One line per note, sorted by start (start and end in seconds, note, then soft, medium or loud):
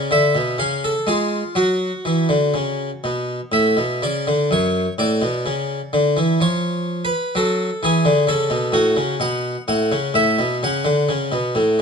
0.00 0.11 D5 medium
0.11 0.33 D3 medium
0.11 0.58 E5 medium
0.35 0.57 B2 soft
0.59 0.92 C#3 soft
0.59 0.82 F5 medium
0.84 1.07 A4 medium
1.07 1.41 G#3 soft
1.07 1.55 F4 medium
1.55 1.90 F#3 soft
1.55 3.65 F#4 medium
2.05 2.28 E3 soft
2.29 2.52 D3 soft
2.54 2.89 C#3 soft
3.04 3.39 B2 soft
3.52 3.75 A2 soft
3.52 4.02 E5 medium
3.77 4.00 B2 soft
4.02 4.25 C#3 soft
4.02 4.51 D5 medium
4.27 4.50 D3 soft
4.51 4.85 F#2 medium
4.51 4.92 C#5 medium
4.98 5.21 A2 medium
4.98 6.39 D5 medium
5.22 5.44 B2 medium
5.46 5.79 C#3 medium
5.93 6.15 D3 medium
6.17 6.38 E3 soft
6.41 7.08 F3 medium
6.41 7.03 C#5 medium
7.05 7.35 B4 medium
7.35 7.69 F#3 medium
7.35 7.82 A4 medium
7.83 8.04 E3 medium
7.83 8.22 G#4 medium
8.05 8.27 D3 medium
8.27 8.49 C#3 medium
8.27 8.74 A4 medium
8.50 8.72 B2 medium
8.72 8.95 A2 medium
8.72 9.14 F#4 medium
8.97 9.19 C#3 medium
9.20 9.54 B2 medium
9.20 9.61 F#5 medium
9.68 9.91 A2 medium
9.68 10.09 F#5 medium
9.92 10.14 C#3 medium
10.14 10.37 A2 medium
10.14 10.55 E5 loud
10.39 10.61 B2 medium
10.63 10.85 C#3 medium
10.63 11.82 F#5 medium
10.85 11.07 D3 medium
11.09 11.31 C#3 medium
11.32 11.54 B2 medium
11.55 11.78 A2 medium